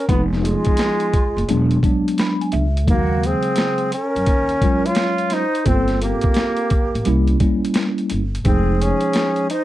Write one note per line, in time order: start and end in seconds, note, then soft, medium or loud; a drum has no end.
0.08 0.53 F1 loud
0.08 1.13 F3 medium
0.08 1.13 G#3 medium
0.08 0.22 B3 medium
0.08 1.14 B3 medium
0.08 1.14 D#4 medium
0.08 0.16 F4 medium
0.08 kick loud
0.08 closed hi-hat medium
0.33 snare soft
0.39 1.83 G#3 medium
0.39 0.45 B3 medium
0.39 0.46 F#4 soft
0.44 1.84 F4 medium
0.44 closed hi-hat medium
0.65 kick medium
0.65 closed hi-hat soft
0.77 snare loud
0.77 closed hi-hat medium
1.00 closed hi-hat soft
1.13 kick medium
1.13 closed hi-hat medium
1.36 1.46 F#1 medium
1.36 closed hi-hat soft
1.48 1.75 E1 medium
1.48 1.78 F#3 medium
1.48 1.79 G#3 medium
1.48 1.79 B3 medium
1.48 1.79 D4 loud
1.48 closed hi-hat medium
1.71 closed hi-hat soft
1.83 2.64 F#3 medium
1.83 2.64 G#3 medium
1.83 2.64 B3 medium
1.83 2.65 D4 loud
1.83 kick medium
1.83 closed hi-hat medium
2.08 closed hi-hat medium
2.18 2.40 B5 medium
2.18 snare loud
2.18 closed hi-hat medium
2.41 2.53 G#5 medium
2.41 closed hi-hat soft
2.52 2.88 C#2 medium
2.52 2.85 E5 medium
2.52 closed hi-hat medium
2.77 closed hi-hat soft
2.87 3.32 D#2 loud
2.87 3.92 C#3 medium
2.87 3.92 F#3 medium
2.87 3.92 G#3 medium
2.87 3.27 A#3 medium
2.87 2.97 D#4 medium
2.87 3.28 F#4 medium
2.87 kick loud
2.87 closed hi-hat medium
2.95 3.96 F5 medium
3.23 3.94 C4 loud
3.23 3.94 G#4 medium
3.23 closed hi-hat medium
3.43 closed hi-hat soft
3.56 snare loud
3.56 closed hi-hat loud
3.78 closed hi-hat soft
3.92 4.87 C#4 loud
3.92 4.88 A#4 medium
3.92 closed hi-hat medium
4.15 4.25 F#2 medium
4.15 closed hi-hat soft
4.26 4.54 D#2 medium
4.26 kick medium
4.26 closed hi-hat medium
4.49 closed hi-hat soft
4.62 5.43 F#3 medium
4.62 5.43 G#3 medium
4.62 5.43 C#4 medium
4.62 5.43 F4 medium
4.62 kick medium
4.62 closed hi-hat medium
4.86 5.35 F4 loud
4.86 5.34 C#5 medium
4.86 closed hi-hat medium
4.95 snare loud
4.95 closed hi-hat medium
5.18 closed hi-hat soft
5.30 5.66 D#4 medium
5.30 5.67 C5 medium
5.30 snare soft
5.30 closed hi-hat medium
5.55 closed hi-hat soft
5.65 6.11 G1 medium
5.65 6.71 A#3 medium
5.65 6.71 C4 medium
5.65 6.00 C4 medium
5.65 6.71 F4 medium
5.65 6.70 A4 medium
5.65 6.00 A4 medium
5.65 kick medium
5.65 closed hi-hat medium
5.88 snare soft
5.88 closed hi-hat soft
6.02 7.38 A#3 medium
6.02 7.38 G4 medium
6.02 closed hi-hat medium
6.21 kick medium
6.21 closed hi-hat soft
6.34 snare loud
6.34 closed hi-hat medium
6.57 closed hi-hat soft
6.70 kick medium
6.70 closed hi-hat medium
6.94 7.04 A1 medium
6.94 closed hi-hat soft
7.05 7.33 C2 medium
7.05 7.36 G3 medium
7.05 7.37 A#3 medium
7.05 7.37 C#4 medium
7.05 7.37 E4 loud
7.05 closed hi-hat medium
7.27 closed hi-hat soft
7.40 8.21 G3 medium
7.40 8.22 A#3 medium
7.40 8.22 C#4 medium
7.40 8.22 E4 medium
7.40 kick medium
7.40 closed hi-hat medium
7.65 closed hi-hat medium
7.74 snare loud
7.74 closed hi-hat medium
7.98 closed hi-hat soft
8.10 8.38 G1 medium
8.10 closed hi-hat medium
8.35 closed hi-hat soft
8.44 8.90 F1 loud
8.44 9.49 F3 medium
8.44 9.50 G#3 medium
8.44 8.83 C4 medium
8.44 9.50 D#4 medium
8.44 8.80 G#4 medium
8.44 9.50 C5 medium
8.44 kick loud
8.44 closed hi-hat medium
8.80 9.50 C#4 medium
8.80 9.50 G#4 medium
8.80 closed hi-hat medium
9.01 closed hi-hat soft
9.13 snare loud
9.13 closed hi-hat medium
9.36 closed hi-hat soft
9.50 9.64 D#4 loud
9.50 9.64 C5 medium
9.50 closed hi-hat medium